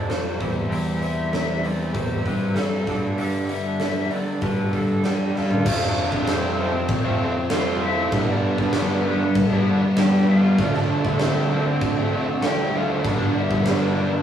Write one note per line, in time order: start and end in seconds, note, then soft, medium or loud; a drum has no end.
0.00 0.37 F2 medium
0.08 0.38 F2 medium
0.08 0.37 C3 medium
0.08 0.39 F3 medium
0.08 0.39 C4 medium
0.08 0.39 D4 medium
0.08 0.40 A4 medium
0.08 0.52 C5 medium
0.08 snare medium
0.08 open hi-hat medium
0.38 0.70 E2 medium
0.38 0.69 C3 medium
0.38 0.70 E3 medium
0.38 0.70 G3 medium
0.38 0.69 C4 medium
0.38 0.56 C4 medium
0.38 0.55 E4 medium
0.38 0.55 G4 medium
0.38 kick medium
0.38 open hi-hat soft
0.55 0.70 C4 soft
0.55 0.71 E4 medium
0.55 0.73 G4 medium
0.70 1.91 E2 medium
0.70 1.00 C3 medium
0.70 1.18 E3 medium
0.70 1.01 G3 medium
0.70 1.01 C4 medium
0.70 0.86 C4 medium
0.70 0.85 E4 medium
0.70 1.00 G4 medium
0.70 0.85 G4 medium
0.70 open hi-hat medium
0.85 1.19 C4 medium
0.85 1.17 E4 medium
0.85 1.17 G4 medium
1.01 1.31 C3 medium
1.01 1.32 G3 medium
1.01 1.32 C4 medium
1.01 1.66 E5 medium
1.01 open hi-hat soft
1.18 1.32 C4 medium
1.18 1.33 E4 medium
1.18 1.35 G4 medium
1.32 1.61 C3 medium
1.32 1.62 E3 medium
1.32 1.63 G3 medium
1.32 1.62 C4 loud
1.32 1.63 C4 medium
1.32 1.64 E4 medium
1.32 1.65 G4 medium
1.32 snare medium
1.32 open hi-hat medium
1.63 1.92 C3 medium
1.63 2.10 E3 medium
1.63 1.92 G3 medium
1.63 1.93 C4 medium
1.63 1.81 C4 medium
1.63 1.80 E4 medium
1.63 1.79 G4 medium
1.63 1.93 D5 medium
1.63 open hi-hat soft
1.80 2.11 C4 soft
1.80 2.10 E4 medium
1.80 2.09 G4 medium
1.93 2.24 E2 medium
1.93 2.24 C3 medium
1.93 2.24 G3 medium
1.93 2.25 C4 medium
1.93 2.25 C5 medium
1.93 kick medium
1.93 open hi-hat medium
2.10 2.25 C4 soft
2.10 2.26 E4 medium
2.10 2.27 G4 medium
2.25 2.84 G2 medium
2.25 2.54 C3 medium
2.25 2.55 E3 medium
2.25 2.55 G3 medium
2.25 2.55 C4 medium
2.25 2.42 C4 medium
2.25 2.41 E4 medium
2.25 2.40 G4 medium
2.25 2.58 B4 medium
2.25 kick medium
2.25 open hi-hat soft
2.41 2.56 C4 medium
2.41 2.56 E4 medium
2.41 2.57 G4 medium
2.55 2.85 C3 medium
2.55 2.86 E3 medium
2.55 2.86 G3 medium
2.55 2.86 C4 medium
2.55 2.87 E4 medium
2.55 2.87 G4 medium
2.55 2.99 A4 medium
2.55 snare medium
2.55 open hi-hat medium
2.87 4.08 G2 medium
2.87 3.17 G2 medium
2.87 3.18 D3 medium
2.87 3.18 G3 medium
2.87 3.04 B3 medium
2.87 3.04 D4 medium
2.87 3.02 A4 medium
2.87 kick medium
2.87 open hi-hat soft
3.03 3.19 B3 soft
3.03 3.19 D4 medium
3.03 3.20 A4 medium
3.18 3.49 G2 medium
3.18 3.49 D3 medium
3.18 3.66 G3 medium
3.18 3.50 G3 medium
3.18 3.35 B3 medium
3.18 3.34 D4 medium
3.18 3.50 G4 medium
3.18 3.33 A4 medium
3.18 open hi-hat medium
3.34 3.67 B3 medium
3.34 3.66 D4 medium
3.34 3.65 A4 medium
3.48 3.80 G2 medium
3.48 3.80 D3 medium
3.48 3.80 G3 medium
3.48 4.13 E5 medium
3.48 open hi-hat soft
3.66 3.80 B3 medium
3.66 3.81 D4 medium
3.66 3.82 A4 medium
3.80 4.10 G2 medium
3.80 4.11 D3 medium
3.80 4.11 G3 medium
3.80 4.12 B3 medium
3.80 4.13 D4 medium
3.80 4.14 A4 medium
3.80 snare medium
3.80 open hi-hat medium
4.10 4.40 G2 medium
4.10 4.40 D3 medium
4.10 4.41 G3 medium
4.10 4.59 G3 medium
4.10 4.29 B3 medium
4.10 4.28 D4 medium
4.10 4.42 D5 medium
4.10 open hi-hat soft
4.15 4.26 A4 medium
4.28 4.59 B3 soft
4.28 4.59 D4 medium
4.28 4.58 A4 medium
4.41 4.71 G2 medium
4.41 4.71 D3 medium
4.41 4.71 G3 medium
4.41 4.74 B4 medium
4.41 kick medium
4.41 open hi-hat medium
4.59 4.74 B3 soft
4.59 4.75 D4 medium
4.59 4.75 A4 medium
4.72 5.03 G2 medium
4.72 5.31 G2 medium
4.72 5.03 D3 medium
4.72 5.03 G3 medium
4.72 4.90 B3 medium
4.72 4.90 D4 medium
4.72 5.05 A4 medium
4.72 kick medium
4.72 open hi-hat soft
4.76 4.88 A4 medium
4.89 5.04 B3 soft
4.89 5.05 D4 medium
4.89 5.05 A4 medium
5.04 5.34 G2 medium
5.04 5.34 D3 medium
5.04 5.35 G3 medium
5.04 5.36 B3 medium
5.04 5.36 D4 medium
5.04 5.34 G4 medium
5.04 5.37 A4 medium
5.04 5.48 D5 medium
5.04 5.36 G5 medium
5.04 snare medium
5.04 open hi-hat medium
5.35 5.64 G2 medium
5.35 5.66 G2 medium
5.35 5.65 D3 medium
5.35 5.65 G3 medium
5.35 5.52 B3 medium
5.35 5.51 D4 medium
5.35 5.79 F4 medium
5.35 5.49 A4 medium
5.35 5.84 F5 medium
5.35 snare soft
5.50 5.66 B3 soft
5.50 5.65 D4 medium
5.50 5.64 A4 medium
5.50 floor tom medium
5.65 6.25 F2 medium
5.65 6.10 F2 loud
5.65 6.26 C3 medium
5.65 6.13 F3 medium
5.65 6.12 A3 medium
5.65 6.10 C4 loud
5.65 6.11 F4 loud
5.65 kick loud
5.65 crash loud
5.65 crash medium
5.82 6.26 D4 medium
5.82 6.30 D5 loud
5.82 snare soft
6.12 6.85 F2 medium
6.12 6.26 F3 medium
6.12 6.26 A3 medium
6.12 6.27 C4 medium
6.12 6.30 F4 medium
6.12 kick medium
6.26 6.89 F2 medium
6.26 6.56 C3 medium
6.26 6.57 F3 loud
6.26 6.58 A3 loud
6.26 6.58 C4 loud
6.26 6.57 C4 medium
6.26 6.61 C5 medium
6.26 snare loud
6.26 crash medium
6.32 6.60 F4 medium
6.58 6.73 C3 medium
6.58 6.73 F3 medium
6.58 6.73 A3 medium
6.58 6.73 C4 medium
6.58 7.48 C4 medium
6.62 6.73 F4 medium
6.62 7.49 C5 medium
6.74 muted overdriven electric guitar stroke soft
6.88 8.08 F2 loud
6.88 kick loud
6.88 crash medium
7.04 7.35 F3 medium
7.04 7.34 A3 medium
7.04 7.34 C4 medium
7.04 7.23 F4 medium
7.21 7.49 F2 medium
7.21 7.50 C3 medium
7.21 7.37 F3 medium
7.21 7.37 A3 medium
7.21 7.36 C4 medium
7.21 7.36 F4 medium
7.35 muted overdriven electric guitar stroke medium
7.50 8.11 F2 medium
7.50 7.80 C3 medium
7.50 7.81 F3 medium
7.50 7.81 A3 loud
7.50 7.82 C4 loud
7.50 7.80 F4 medium
7.50 7.84 F5 loud
7.50 snare loud
7.50 crash medium
7.54 7.85 F4 loud
7.81 8.10 C3 medium
7.81 7.98 F3 medium
7.81 7.97 A3 medium
7.81 7.96 C4 medium
7.81 8.25 E4 medium
7.81 8.30 E5 loud
7.86 8.13 F4 medium
7.97 8.12 F3 medium
7.97 8.11 A3 medium
7.97 8.11 C4 medium
8.12 8.56 G2 medium
8.12 8.72 G2 loud
8.12 8.72 D3 loud
8.12 8.59 G3 loud
8.12 8.58 B3 loud
8.12 8.57 D4 loud
8.12 kick loud
8.12 crash medium
8.29 8.72 D4 medium
8.29 8.77 D5 medium
8.58 9.31 G2 medium
8.58 8.73 G3 medium
8.58 8.74 B3 medium
8.58 8.75 D4 medium
8.58 kick medium
8.73 9.35 G2 loud
8.73 9.03 D3 loud
8.73 9.04 G3 medium
8.73 9.05 B3 loud
8.73 9.03 B3 medium
8.73 9.06 D4 loud
8.73 9.06 B4 medium
8.73 snare loud
8.73 crash medium
9.04 9.20 D3 medium
9.04 9.19 G3 medium
9.04 9.94 B3 medium
9.04 9.19 B3 medium
9.04 9.20 D4 medium
9.04 10.01 B4 loud
9.20 muted overdriven electric guitar stroke medium
9.35 10.55 G2 loud
9.35 kick loud
9.35 crash medium
9.50 9.82 G3 medium
9.50 9.82 B3 medium
9.50 9.82 D4 medium
9.67 9.96 G2 medium
9.67 9.82 D3 medium
9.67 9.82 G3 medium
9.67 9.81 B3 medium
9.67 9.82 D4 medium
9.82 muted overdriven electric guitar stroke medium
9.97 10.57 G2 loud
9.97 10.27 D3 medium
9.97 10.28 G3 medium
9.97 10.28 B3 loud
9.97 10.30 D4 loud
9.97 10.26 G4 medium
9.97 10.30 G5 loud
9.97 snare loud
9.97 crash medium
10.12 snare soft
10.28 10.57 D3 medium
10.28 10.44 G3 medium
10.28 10.43 B3 medium
10.28 10.43 D4 medium
10.28 10.71 F4 medium
10.28 10.76 F5 loud
10.43 10.58 G3 medium
10.43 10.57 B3 medium
10.43 10.60 D4 medium
10.58 11.02 D2 loud
10.58 11.19 D3 medium
10.58 11.05 F3 loud
10.58 11.05 A3 medium
10.58 11.04 D4 loud
10.58 kick loud
10.58 crash medium
10.74 11.17 D4 medium
10.74 11.23 D5 medium
10.74 snare soft
11.05 11.78 D2 loud
11.05 11.19 F3 medium
11.05 11.20 A3 medium
11.05 11.22 D4 medium
11.05 kick medium
11.20 11.49 D3 loud
11.20 11.50 F3 medium
11.20 11.51 A3 loud
11.20 11.49 C4 medium
11.20 11.52 D4 loud
11.20 11.53 C5 medium
11.20 snare loud
11.20 crash medium
11.50 11.97 D3 medium
11.50 11.65 F3 medium
11.50 11.65 A3 medium
11.50 12.40 C4 medium
11.50 11.64 D4 medium
11.50 12.43 C5 medium
11.65 muted overdriven electric guitar stroke medium
11.81 13.01 D2 loud
11.81 kick loud
11.81 crash medium
11.96 12.27 F3 medium
11.96 12.26 A3 medium
11.96 12.26 D4 medium
12.13 12.43 D3 medium
12.13 12.29 F3 medium
12.13 12.29 A3 medium
12.13 12.29 D4 medium
12.27 muted overdriven electric guitar stroke medium
12.42 12.72 D3 medium
12.42 12.72 F3 medium
12.42 12.73 A3 loud
12.42 12.73 D4 medium
12.42 12.72 G4 medium
12.42 12.76 G5 loud
12.42 snare loud
12.42 crash medium
12.73 13.02 D3 medium
12.73 12.89 F3 medium
12.73 12.88 A3 medium
12.73 12.87 D4 medium
12.73 12.89 F4 medium
12.73 12.91 F5 medium
12.88 13.03 F3 medium
12.88 13.03 A3 medium
12.88 13.02 D4 medium
12.88 13.33 D4 medium
12.88 13.38 D5 medium
13.04 13.48 G1 loud
13.04 13.64 G2 medium
13.04 13.64 D3 loud
13.04 13.50 G3 loud
13.04 13.50 B3 loud
13.04 13.49 D4 loud
13.04 kick loud
13.04 crash medium
13.38 13.65 E4 medium
13.38 13.65 E5 medium
13.50 14.22 G1 medium
13.50 13.65 G3 medium
13.50 13.65 B3 medium
13.50 13.66 D4 medium
13.50 kick medium
13.65 14.22 G2 medium
13.65 13.94 D3 loud
13.65 13.95 G3 loud
13.65 13.96 B3 loud
13.65 14.22 D4 medium
13.65 13.96 D4 loud
13.65 14.22 D5 medium
13.65 snare loud
13.65 crash medium
13.95 14.12 D3 medium
13.95 14.11 G3 medium
13.95 14.11 B3 medium
13.95 14.11 D4 medium
14.12 muted overdriven electric guitar stroke medium